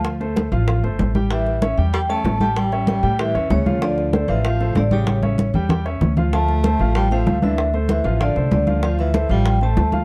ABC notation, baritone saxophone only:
X:1
M:4/4
L:1/8
Q:1/4=191
K:Dm
V:1 name="Baritone saxophone" clef=bass
z8 | E,3 z G, A,2 A, | G,2 G,2 E,2 ^C,2 | D,3 E, F,2 D, ^C,- |
^C,3 z4 z | A,4 G, F,2 E,- | E, z E,2 D,2 D,2 | F, E,2 G,2 A,3 |]